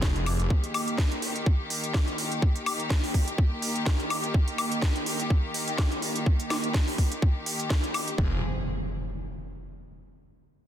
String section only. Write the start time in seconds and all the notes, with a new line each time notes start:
Already playing: F3 C4 G#4
0.50 D#3 A#3 G4
8.18 F3 C4 G#4